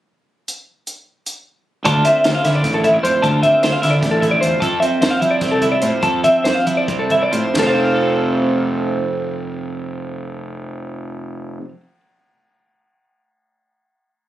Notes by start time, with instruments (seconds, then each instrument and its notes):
0.48 closed hi-hat
0.87 closed hi-hat
1.26 closed hi-hat
1.85 fingered electric bass D2, clean electric guitar D3 F4 A5, kick, closed hi-hat
2.05 clean electric guitar C4 E5, closed hi-hat
2.24 fingered electric bass D2, clean electric guitar F4 C5, snare, closed hi-hat
2.35 clean electric guitar F5
2.44 fingered electric bass D3, clean electric guitar E4 E5, snare, closed hi-hat
2.55 clean electric guitar D5
2.63 fingered electric bass A1, clean electric guitar A2, kick, snare, closed hi-hat
2.74 clean electric guitar A4
2.84 clean electric guitar E4 E5, kick, closed hi-hat
2.94 clean electric guitar D5
3.03 fingered electric bass F2, clean electric guitar F3 C5, closed hi-hat
3.22 fingered electric bass D2, clean electric guitar D3 F4 A5, kick, closed hi-hat
3.43 clean electric guitar C4 E5, kick, closed hi-hat
3.63 fingered electric bass D2, clean electric guitar F4 C5, snare, closed hi-hat
3.72 clean electric guitar F5
3.82 fingered electric bass D3, clean electric guitar E4 E5, snare, closed hi-hat
3.91 clean electric guitar D5
4.01 fingered electric bass A1, clean electric guitar A2, kick, snare, closed hi-hat
4.11 clean electric guitar A4
4.21 clean electric guitar E4 E5, kick, closed hi-hat
4.31 clean electric guitar D5
4.41 fingered electric bass E2, clean electric guitar F3 C5, closed hi-hat
4.60 fingered electric bass F2, clean electric guitar F2 A4 A5, kick, closed hi-hat
4.80 clean electric guitar C4 E5, closed hi-hat
5.01 fingered electric bass F2, clean electric guitar C5, snare, closed hi-hat
5.11 clean electric guitar F5
5.20 fingered electric bass F3, clean electric guitar E4 E5, closed hi-hat
5.31 clean electric guitar D5
5.41 fingered electric bass C2, clean electric guitar C3, kick, snare, closed hi-hat
5.51 clean electric guitar A4
5.62 clean electric guitar E4 E5, kick, closed hi-hat
5.72 clean electric guitar D5
5.82 fingered electric bass A2, clean electric guitar F3 C5, closed hi-hat
6.03 fingered electric bass F2, clean electric guitar F2 A4 A5, kick, closed hi-hat
6.24 clean electric guitar C4 E5, kick, closed hi-hat
6.44 fingered electric bass F2, clean electric guitar C5, snare, closed hi-hat
6.55 clean electric guitar F5
6.66 fingered electric bass F3, clean electric guitar E4 E5, closed hi-hat
6.77 clean electric guitar D5
6.88 fingered electric bass C2, clean electric guitar C3, kick, closed hi-hat
6.99 clean electric guitar A4
7.10 clean electric guitar E4 E5, kick, closed hi-hat
7.23 clean electric guitar D5
7.31 fingered electric bass A2, clean electric guitar F3 C5, closed hi-hat
7.55 fingered electric bass F1, clean electric guitar F2, kick, snare, ride bell
7.59 clean electric guitar A4 C5
7.65 clean electric guitar F3 F5
7.75 clean electric guitar C4
7.95 clean electric guitar A4